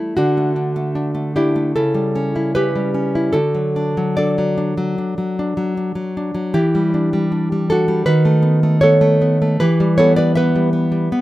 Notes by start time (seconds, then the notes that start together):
Already playing: G3 A3 E4
0.17 D3 D4 F#4
0.37 A3
0.56 D4
0.76 A3
0.95 D4
1.15 A3
1.36 D4 E4 G4
1.56 A3
1.76 C#3 E4 A4
1.95 G3
2.16 C#4
2.36 E4
2.55 C#4 G4 B4
2.76 G3
2.94 C#4
3.15 E4
3.33 D3 F#4 A4
3.55 F#3
3.76 D4
3.97 F#3
4.17 D4 A4 D5
4.38 F#3
4.58 D4
4.78 F#3
4.98 D4
5.18 F#3
5.39 D4
5.57 F#3
5.77 D4
5.95 F#3
6.17 D4
6.35 F#3
6.54 E3 E4 G4
6.75 G3
6.94 D4
7.13 G3
7.32 D4
7.52 G3
7.70 D4 F#4 A4
7.88 G3
8.06 D#3 F#4 B4
8.25 A3
8.43 B3
8.63 A3
8.81 B3 A4 C#5
9.01 A3
9.21 B3
9.42 A3
9.60 E3 G4 B4
9.80 G3
9.98 B3 A4 C#5
10.16 G3 B4 D5
10.35 B3 B4 E5
10.56 G3
10.73 B3
10.92 G3
11.12 B3